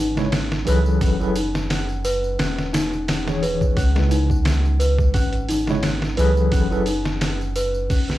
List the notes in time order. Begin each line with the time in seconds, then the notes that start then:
Already playing: G#1 C#4 D#4 B4
0.16 C#3 G#3 E4 C#5, snare, tambourine
0.32 C#4, snare, open hi-hat, tambourine
0.52 snare, tambourine
0.65 C#2 E3 F#3 G#4 A4 B4, open hi-hat, tambourine
0.86 tambourine
1.01 F#1 C#4, kick, open hi-hat, tambourine
1.20 F#3 E4 G#4 A4 B4, tambourine
1.36 D#4, open hi-hat, tambourine
1.55 snare, tambourine
1.70 C#4, snare, open hi-hat, tambourine
1.89 tambourine
2.04 B4, open hi-hat, tambourine
2.24 tambourine
2.39 E1 C#4, snare, open hi-hat, tambourine
2.58 snare, tambourine
2.73 D#4, snare, open hi-hat, tambourine
2.94 tambourine
3.08 C#4, snare, open hi-hat, tambourine
3.26 E3 G#4 C#5, snare, tambourine
3.42 B4, open hi-hat, tambourine
3.61 kick, tambourine, low conga
3.77 C#2 C#4, kick, open hi-hat, tambourine
3.95 C#3 G#3 E4 B4, snare, tambourine
4.11 D#4, open hi-hat, tambourine
4.30 kick, tambourine
4.45 C#4, snare, open hi-hat, tambourine
4.65 tambourine
4.80 B4, open hi-hat, tambourine
4.99 kick, tambourine
5.14 G#1 C#4, kick, open hi-hat, tambourine
5.33 closed hi-hat, tambourine
5.49 D#4, open hi-hat, tambourine, low conga
5.67 C#3 G#3 E4 C#5, snare, tambourine
5.83 C#4, snare, open hi-hat, tambourine
6.02 snare, tambourine
6.17 C#2 E3 F#3 G#4 A4 B4, open hi-hat, tambourine
6.37 tambourine
6.52 F#1 C#4, kick, open hi-hat, tambourine
6.70 F#3 E4 G#4 A4 B4, tambourine
6.86 D#4, open hi-hat, tambourine
7.05 snare, tambourine
7.21 C#4, snare, open hi-hat, tambourine
7.41 tambourine
7.56 B4, open hi-hat, tambourine
7.74 tambourine
7.90 C#4, kick, open hi-hat, tambourine
8.09 snare, tambourine